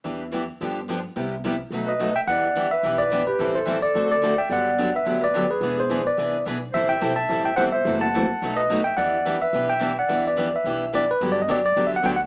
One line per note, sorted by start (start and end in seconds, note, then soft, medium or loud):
0.04 0.49 E2 medium
0.04 0.22 E3 medium
0.04 0.22 G3 medium
0.04 0.23 B3 medium
0.04 0.22 D4 medium
0.04 0.23 E4 soft
0.04 0.23 G4 medium
0.04 0.23 B4 medium
0.31 0.42 E3 medium
0.31 0.42 G3 medium
0.31 0.43 B3 medium
0.31 0.42 D4 medium
0.31 0.42 E4 medium
0.31 0.43 G4 medium
0.31 0.42 B4 medium
0.61 1.05 G2 medium
0.61 0.79 D3 medium
0.61 0.79 F3 medium
0.61 0.79 B3 medium
0.61 0.79 D4 medium
0.61 0.79 G4 medium
0.88 0.98 D3 medium
0.88 0.98 F3 medium
0.88 0.98 B3 medium
0.88 0.98 D4 medium
0.88 0.99 G4 medium
1.16 1.61 C2 medium
1.16 1.34 C3 medium
1.16 1.34 G3 medium
1.16 1.34 B3 medium
1.16 1.35 E4 medium
1.16 1.35 G4 medium
1.44 1.54 C3 medium
1.44 1.54 G3 medium
1.44 1.54 B3 medium
1.44 1.54 E4 medium
1.44 1.55 G4 medium
1.70 2.16 B1 medium
1.70 1.90 B2 medium
1.70 1.90 F#3 medium
1.70 1.90 A3 medium
1.70 1.90 D#4 medium
1.70 1.91 F#4 medium
1.70 1.91 B4 medium
1.86 2.13 B4 medium
1.86 2.14 D#5 medium
2.00 2.10 B2 medium
2.00 2.10 F#3 medium
2.00 2.10 A3 medium
2.00 2.10 D#4 medium
2.00 2.11 F#4 medium
2.00 2.10 B4 medium
2.15 2.21 E5 medium
2.15 2.21 G5 medium
2.27 2.72 E2 medium
2.27 2.46 E3 medium
2.27 2.46 G3 medium
2.27 2.47 B3 medium
2.27 2.46 D4 medium
2.27 2.46 E4 medium
2.27 2.47 G4 medium
2.27 2.47 B4 medium
2.27 2.70 D5 medium
2.27 2.68 F#5 loud
2.55 2.66 E3 medium
2.55 2.66 G3 medium
2.55 2.66 B3 medium
2.55 2.66 D4 medium
2.55 2.66 E4 medium
2.55 2.67 G4 medium
2.55 2.66 B4 medium
2.71 2.98 B4 medium
2.71 3.00 E5 medium
2.83 3.28 B1 medium
2.83 3.02 E3 medium
2.83 3.02 G3 medium
2.83 3.02 B3 medium
2.83 3.02 D4 medium
2.83 3.02 E4 medium
2.83 3.03 G4 medium
2.83 3.03 B4 medium
2.98 3.26 B4 medium
2.98 3.25 D5 medium
3.10 3.21 E3 medium
3.10 3.21 G3 medium
3.10 3.22 B3 medium
3.10 3.22 D4 medium
3.10 3.22 E4 medium
3.10 3.23 G4 medium
3.10 3.22 B4 medium
3.27 3.53 G4 medium
3.27 3.53 B4 medium
3.39 3.84 A1 medium
3.39 3.58 E3 medium
3.39 3.58 G3 medium
3.39 3.58 C4 medium
3.39 3.58 E4 medium
3.39 3.59 A4 medium
3.55 3.82 A4 medium
3.55 3.81 C5 medium
3.67 3.78 E3 medium
3.67 3.78 G3 medium
3.67 3.78 C4 medium
3.67 3.78 E4 medium
3.67 3.78 A4 medium
3.82 4.09 A4 medium
3.82 4.10 D5 medium
3.95 4.40 D2 medium
3.95 4.14 D3 medium
3.95 4.14 A3 medium
3.95 4.14 C4 medium
3.95 4.14 F#4 medium
3.95 4.14 A4 medium
4.10 4.36 A4 medium
4.10 4.40 D5 medium
4.24 4.34 D3 medium
4.24 4.34 A3 medium
4.24 4.34 C4 medium
4.24 4.34 F#4 medium
4.24 4.34 A4 medium
4.38 4.50 E5 medium
4.38 4.51 G5 medium
4.50 4.95 G1 medium
4.50 4.70 D3 medium
4.50 4.70 F#3 medium
4.50 4.70 B3 medium
4.50 4.70 D4 medium
4.50 4.70 G4 medium
4.50 4.91 D5 medium
4.50 4.97 F#5 medium
4.78 4.89 D3 medium
4.78 4.89 F#3 medium
4.78 4.89 B3 medium
4.78 4.89 D4 medium
4.78 4.89 G4 medium
4.95 5.20 B4 medium
4.95 5.24 E5 medium
5.06 5.51 D2 medium
5.06 5.25 D3 medium
5.06 5.25 F#3 medium
5.06 5.25 B3 medium
5.06 5.26 D4 medium
5.06 5.26 G4 medium
5.21 5.48 B4 medium
5.21 5.49 D5 medium
5.34 5.45 D3 medium
5.34 5.45 F#3 medium
5.34 5.45 B3 medium
5.34 5.45 D4 medium
5.34 5.45 G4 medium
5.50 5.76 G#4 medium
5.50 5.79 B4 medium
5.61 6.06 E1 medium
5.61 5.81 E3 medium
5.61 5.81 B3 medium
5.61 5.81 D4 medium
5.61 5.82 G#4 medium
5.61 5.82 B4 medium
5.77 6.04 G#4 medium
5.77 6.08 C5 medium
5.90 6.01 E3 medium
5.90 6.01 B3 medium
5.90 6.01 D4 medium
5.90 6.01 G#4 medium
5.90 6.01 B4 medium
6.06 6.43 B4 medium
6.06 6.44 D5 medium
6.18 6.42 C2 medium
6.18 6.37 E3 medium
6.18 6.37 B3 medium
6.18 6.37 D4 medium
6.18 6.37 G#4 medium
6.18 6.37 B4 medium
6.46 6.70 B1 medium
6.46 6.57 E3 medium
6.46 6.57 B3 medium
6.46 6.57 D4 medium
6.46 6.57 G#4 medium
6.46 6.57 B4 medium
6.72 6.97 A1 medium
6.72 6.93 E3 medium
6.72 6.93 G3 medium
6.72 6.93 C4 medium
6.72 6.93 E4 medium
6.72 6.88 C5 medium
6.72 6.91 E5 medium
6.76 6.94 A4 medium
6.89 7.15 E5 medium
6.89 7.18 G5 medium
7.02 7.26 B1 medium
7.02 7.12 E3 medium
7.02 7.13 G3 medium
7.02 7.13 C4 medium
7.02 7.13 E4 medium
7.02 7.13 A4 medium
7.15 7.43 E5 medium
7.15 7.46 A5 medium
7.30 7.54 A1 medium
7.30 7.49 E3 medium
7.30 7.49 G3 medium
7.30 7.49 C4 medium
7.30 7.49 E4 medium
7.30 7.49 A4 medium
7.45 7.56 E5 medium
7.45 7.58 G5 medium
7.56 7.82 G1 medium
7.56 7.68 E3 medium
7.56 7.68 G3 medium
7.56 7.69 C4 medium
7.56 7.69 E4 medium
7.56 7.69 A4 medium
7.56 7.64 C5 medium
7.56 7.64 F#5 medium
7.72 7.99 C5 medium
7.72 7.99 E5 medium
7.85 8.30 F#1 medium
7.85 8.04 C3 medium
7.85 8.05 E3 medium
7.85 8.05 F#3 medium
7.85 8.05 A3 medium
7.85 8.05 C4 medium
7.85 8.05 E4 medium
7.85 8.05 F#4 medium
7.85 8.05 A4 medium
8.01 8.53 F#5 medium
8.01 8.59 A5 medium
8.14 8.25 C3 medium
8.14 8.25 E3 medium
8.14 8.24 F#3 medium
8.14 8.25 A3 medium
8.14 8.25 C4 medium
8.14 8.25 E4 medium
8.14 8.26 F#4 medium
8.14 8.25 A4 medium
8.42 8.87 B1 medium
8.42 8.61 B2 medium
8.42 8.61 F#3 medium
8.42 8.61 A3 medium
8.42 8.61 D#4 medium
8.42 8.61 F#4 medium
8.42 8.62 B4 medium
8.56 8.83 B4 medium
8.56 8.83 D#5 medium
8.70 8.80 B2 medium
8.70 8.80 F#3 medium
8.70 8.80 A3 medium
8.70 8.81 D#4 medium
8.70 8.81 F#4 medium
8.70 8.81 B4 medium
8.84 8.96 E5 medium
8.84 8.96 G5 medium
8.97 9.42 E2 medium
8.97 9.16 E3 medium
8.97 9.16 G3 medium
8.97 9.16 B3 medium
8.97 9.16 D4 medium
8.97 9.17 E4 medium
8.97 9.17 G4 medium
8.97 9.17 B4 medium
8.97 9.38 D5 medium
8.97 9.42 F#5 medium
9.25 9.36 E3 medium
9.25 9.36 G3 medium
9.25 9.36 B3 medium
9.25 9.36 D4 medium
9.25 9.36 E4 medium
9.25 9.37 G4 loud
9.25 9.36 B4 medium
9.42 9.68 B4 medium
9.42 9.70 E5 medium
9.53 9.98 B1 medium
9.53 9.72 E3 medium
9.53 9.72 G3 medium
9.53 9.72 B3 medium
9.53 9.73 D4 medium
9.53 9.73 E4 medium
9.53 9.73 G4 medium
9.53 9.73 B4 medium
9.70 9.96 E5 medium
9.70 9.96 G5 medium
9.79 9.91 E3 medium
9.79 9.91 G3 medium
9.79 9.91 B3 medium
9.79 9.91 D4 medium
9.79 9.92 E4 medium
9.79 9.92 G4 medium
9.79 9.91 B4 medium
9.99 10.25 D5 medium
9.99 10.24 F#5 medium
10.09 10.54 E2 medium
10.09 10.28 E3 medium
10.09 10.28 G3 medium
10.09 10.28 B3 medium
10.09 10.28 D4 medium
10.09 10.28 E4 medium
10.09 10.28 G4 medium
10.09 10.28 B4 medium
10.27 10.53 B4 medium
10.27 10.55 D5 medium
10.36 10.47 E3 medium
10.36 10.47 G3 medium
10.36 10.48 B3 medium
10.36 10.47 D4 medium
10.36 10.48 E4 medium
10.36 10.48 G4 medium
10.36 10.48 B4 medium
10.54 10.91 B4 medium
10.54 10.92 E5 medium
10.64 11.09 B1 medium
10.64 10.84 E3 medium
10.64 10.84 G3 medium
10.64 10.84 B3 medium
10.64 10.84 D4 medium
10.64 10.85 E4 medium
10.64 10.85 G4 medium
10.64 10.85 B4 medium
10.93 11.03 E3 medium
10.93 11.03 G3 medium
10.93 11.04 B3 medium
10.93 11.04 D4 medium
10.93 11.04 E4 medium
10.93 11.04 G4 medium
10.93 11.04 B4 medium
10.93 11.11 D5 medium
11.11 11.30 B4 medium
11.21 11.48 G2 medium
11.21 11.39 D3 medium
11.21 11.40 F#3 medium
11.21 11.40 B3 medium
11.21 11.40 D4 medium
11.21 11.40 G4 medium
11.32 11.40 D5 medium
11.42 11.50 D#5 medium
11.48 11.76 F#2 medium
11.48 11.59 D3 medium
11.48 11.59 F#3 medium
11.48 11.59 B3 medium
11.48 11.60 D4 medium
11.48 11.60 G4 medium
11.48 11.64 D5 medium
11.66 11.85 D5 medium
11.76 12.04 E2 medium
11.76 11.95 D3 medium
11.76 11.95 F#3 medium
11.76 11.95 B3 medium
11.76 11.96 D4 medium
11.76 11.95 G4 medium
11.87 11.91 E5 medium
11.96 12.05 F#5 medium
12.05 12.26 D2 medium
12.05 12.15 D3 medium
12.05 12.15 F#3 medium
12.05 12.15 B3 medium
12.05 12.16 D4 medium
12.05 12.16 G4 medium
12.05 12.10 G5 medium
12.16 12.20 F#5 medium